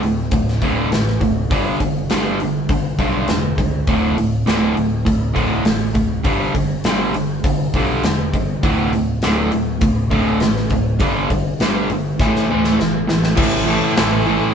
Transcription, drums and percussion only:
0.03 open hi-hat soft
0.31 kick loud
0.31 open hi-hat medium
0.48 snare soft
0.62 kick medium
0.62 open hi-hat medium
0.92 snare loud
0.92 open hi-hat medium
1.08 snare soft
1.21 kick medium
1.21 open hi-hat medium
1.51 kick loud
1.51 open hi-hat medium
1.80 kick medium
1.80 open hi-hat medium
2.10 snare loud
2.10 open hi-hat medium
2.40 open hi-hat soft
2.69 kick loud
2.69 open hi-hat medium
2.99 kick medium
2.99 open hi-hat medium
3.28 snare loud
3.28 open hi-hat medium
3.58 kick medium
3.58 open hi-hat soft
3.87 kick loud
3.87 open hi-hat medium
4.18 open hi-hat soft
4.47 snare loud
4.47 open hi-hat medium
4.77 open hi-hat soft
5.06 kick loud
5.06 open hi-hat medium
5.36 kick medium
5.36 open hi-hat soft
5.65 snare loud
5.65 open hi-hat medium
5.95 kick medium
5.95 open hi-hat soft
6.24 kick loud
6.24 open hi-hat medium
6.55 kick medium
6.55 open hi-hat medium
6.84 snare loud
6.84 open hi-hat medium
7.14 open hi-hat soft
7.44 kick loud
7.44 open hi-hat medium
7.74 kick medium
7.74 open hi-hat medium
8.04 snare loud
8.04 open hi-hat medium
8.34 kick medium
8.34 open hi-hat soft
8.63 kick loud
8.63 open hi-hat medium
8.93 open hi-hat soft
9.22 snare loud
9.22 open hi-hat medium
9.52 open hi-hat soft
9.81 kick loud
9.81 open hi-hat medium
10.11 kick medium
10.11 open hi-hat soft
10.40 snare medium
10.40 open hi-hat medium
10.56 snare soft
10.70 kick medium
10.70 open hi-hat medium
11.00 kick loud
11.00 open hi-hat medium
11.30 kick medium
11.30 open hi-hat medium
11.60 snare loud
11.60 open hi-hat medium
11.90 open hi-hat soft
12.20 kick loud
12.20 snare medium
12.36 snare medium
12.64 snare medium
12.80 snare medium
13.09 snare medium
13.24 snare medium
13.37 kick loud
13.37 crash loud
13.97 snare loud
13.97 open hi-hat medium

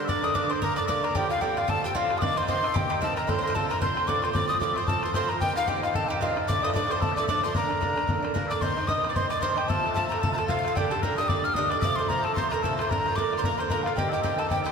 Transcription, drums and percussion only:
0.09 bodhran medium
0.24 bodhran medium
0.30 bodhran medium
0.35 bodhran medium
0.51 bodhran medium
0.62 bodhran medium
0.77 bodhran medium
0.89 bodhran medium
1.04 bodhran medium
1.15 bodhran medium
1.31 bodhran soft
1.36 bodhran medium
1.42 bodhran medium
1.57 bodhran medium
1.69 bodhran medium
1.84 bodhran medium
1.95 bodhran medium
2.10 bodhran medium
2.22 bodhran medium
2.37 bodhran medium
2.43 bodhran medium
2.49 bodhran medium
2.64 bodhran medium
2.76 bodhran medium
2.90 bodhran medium
3.03 bodhran medium
3.17 bodhran medium
3.29 bodhran medium
3.44 bodhran soft
3.50 bodhran medium
3.56 bodhran medium
3.71 bodhran medium
3.76 bodhran medium
3.82 bodhran medium
3.97 bodhran medium
4.09 bodhran medium
4.24 bodhran medium
4.35 bodhran medium
4.50 bodhran soft
4.55 bodhran medium
4.62 bodhran medium
4.77 bodhran medium
4.88 bodhran medium
5.03 bodhran medium
5.14 bodhran medium
5.30 bodhran medium
5.42 bodhran medium
5.57 bodhran soft
5.63 bodhran medium
5.68 bodhran medium
5.83 bodhran medium
5.95 bodhran medium
6.11 bodhran medium
6.22 bodhran medium
6.37 bodhran medium
6.50 bodhran medium
6.64 bodhran medium
6.70 bodhran medium
6.76 bodhran medium
6.91 bodhran medium
7.02 bodhran medium
7.17 bodhran medium
7.28 bodhran medium
7.43 bodhran medium
7.55 bodhran medium
7.71 bodhran medium
7.82 bodhran medium
7.98 bodhran medium
8.09 bodhran medium
8.25 bodhran medium
8.36 bodhran medium
8.52 bodhran medium
8.62 bodhran medium
8.77 bodhran soft
8.88 bodhran medium
9.04 bodhran medium
9.16 bodhran medium
9.31 bodhran medium
9.43 bodhran medium
9.51 bodhran soft
9.58 bodhran medium
9.70 bodhran medium
9.86 bodhran medium
9.97 bodhran medium
10.12 bodhran medium
10.24 bodhran medium
10.39 bodhran medium
10.49 bodhran medium
10.58 bodhran soft
10.65 bodhran medium
10.77 bodhran medium
10.92 bodhran medium
11.03 bodhran medium
11.18 bodhran medium
11.29 bodhran medium
11.55 bodhran medium
11.71 bodhran medium
11.82 bodhran loud
11.99 bodhran medium
12.10 bodhran medium
12.25 bodhran medium
12.37 bodhran medium
12.52 bodhran medium
12.64 bodhran medium
12.72 bodhran soft
12.79 bodhran medium
12.85 bodhran medium
12.91 bodhran medium
13.06 bodhran soft
13.18 bodhran medium
13.33 bodhran medium
13.44 bodhran medium
13.59 bodhran medium
13.70 bodhran medium
13.78 bodhran soft
13.86 bodhran medium
13.98 bodhran medium
14.13 bodhran soft
14.24 bodhran medium
14.40 bodhran medium
14.51 bodhran medium
14.66 bodhran medium

